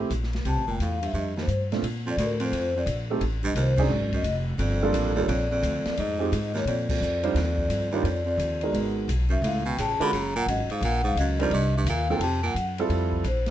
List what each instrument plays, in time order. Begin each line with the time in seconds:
0.10 upright bass A#1, hi-hat pedal, ride
0.23 snare
0.33 snare, ride
0.45 upright bass C2, baritone saxophone C3, vibraphone A5, ride
0.56 upright bass A1
0.67 upright bass F1, baritone saxophone A#2, vibraphone G5
0.79 upright bass E2, baritone saxophone A2, vibraphone F5, hi-hat pedal, ride
1.02 baritone saxophone G2, vibraphone E5, ride
1.13 upright bass F2, baritone saxophone G2
1.18 vibraphone D#5
1.36 baritone saxophone D#2, snare
1.40 vibraphone C5
1.47 upright bass G2, hi-hat pedal, ride
1.72 grand piano A#2 A3 C4 D4 F4, snare, ride
1.82 upright bass A#2, ride
2.06 baritone saxophone F2, vibraphone D5
2.17 baritone saxophone D2, upright bass A2, hi-hat pedal, ride
2.23 vibraphone A#4
2.40 baritone saxophone F2, ride
2.44 vibraphone C5
2.52 upright bass F2, ride
2.76 baritone saxophone F2, vibraphone D5
2.86 upright bass A#1, hi-hat pedal, ride
3.10 grand piano A3 C4 D#4 G4 A4
3.21 upright bass A1, ride
3.44 baritone saxophone G2, vibraphone D#5
3.55 upright bass C2, baritone saxophone D#2, hi-hat pedal, ride
3.59 vibraphone C5
3.76 baritone saxophone F#2, grand piano F#3 C4 D4 D#4 G#4, vibraphone D5, kick, crash
3.89 upright bass G#1
4.12 baritone saxophone F#2, vibraphone D#5, kick, ride
4.23 upright bass F1, hi-hat pedal, ride
4.58 upright bass G1, baritone saxophone F2, vibraphone D5, ride
4.82 grand piano G3 A#3 D4 F4 A4
4.93 upright bass A1, hi-hat pedal, ride
5.15 baritone saxophone D#2, grand piano G3 A#3 D4 F4 A4, vibraphone C#5
5.28 upright bass A#1, baritone saxophone F2, vibraphone D5, ride
5.51 baritone saxophone F2, vibraphone D5
5.62 upright bass D2, hi-hat pedal, ride
5.85 muted upright bass stroke, snare, ride
5.97 upright bass F2, baritone saxophone G#2, ride
6.19 grand piano G#3 C4 D#4 F4 G4
6.32 upright bass G#2, hi-hat pedal, ride
6.54 baritone saxophone D#2, vibraphone C#5, snare
6.65 baritone saxophone F2, upright bass A#2, vibraphone D5, ride
6.89 baritone saxophone F2, vibraphone D5, kick, crash
7.01 upright bass F2, hi-hat pedal
7.23 grand piano G3 D4 D#4 F4 C5, ride
7.34 upright bass D#2, baritone saxophone F2, snare, ride
7.58 kick
7.69 upright bass G2, hi-hat pedal, ride
7.91 baritone saxophone D#2, grand piano G3 D4 D#4 F4 A#4, vibraphone C#5
8.03 upright bass F2, baritone saxophone F2, vibraphone D5, ride
8.25 baritone saxophone F2, vibraphone D5
8.38 upright bass D#2, hi-hat pedal, ride
8.61 grand piano G#3 B3 D#4 F#4 A#4, ride
8.73 upright bass G#1, ride
9.08 upright bass B1, hi-hat pedal, ride
9.29 baritone saxophone F#2, vibraphone E5
9.42 upright bass C#2, baritone saxophone A2, ride
9.46 vibraphone F5
9.65 baritone saxophone B2, vibraphone G5
9.77 upright bass A1, baritone saxophone C#3, vibraphone A5, hi-hat pedal, ride
9.99 baritone saxophone D3, grand piano G#3 C#4 F4 F#4 A#4, vibraphone B5, muted upright bass stroke, ride
10.12 upright bass F#1, baritone saxophone C#3, vibraphone A#5, ride
10.36 baritone saxophone A#2, vibraphone F#5
10.46 upright bass G#1, baritone saxophone F#2, vibraphone D#5, hi-hat pedal, ride
10.68 baritone saxophone G#2, muted upright bass stroke, ride
10.81 upright bass A#1, baritone saxophone A#2, vibraphone F#5, ride
11.04 baritone saxophone G#2, vibraphone F5
11.15 upright bass C#2, vibraphone D#5, hi-hat pedal, ride
11.19 baritone saxophone F#2
11.39 baritone saxophone F2, grand piano G3 C4 D4 D#4 A#4, vibraphone D5, ride
11.51 upright bass C2, baritone saxophone G2, vibraphone D#5, ride
11.75 baritone saxophone G2, vibraphone E5
11.84 upright bass D#2, vibraphone F5, hi-hat pedal, ride
11.89 baritone saxophone A#2
12.09 baritone saxophone A#2, grand piano F#3 C4 D#4 F4 A4, vibraphone G5
12.19 upright bass F2, vibraphone A5, ride
12.23 baritone saxophone C3
12.43 baritone saxophone A#2, vibraphone F#5
12.54 upright bass F#2, hi-hat pedal, ride
12.78 grand piano G3 C4 E4 F4 A4, ride
12.89 upright bass F2, ride
13.12 kick
13.24 upright bass A#1, vibraphone C5, hi-hat pedal, ride
13.46 snare, ride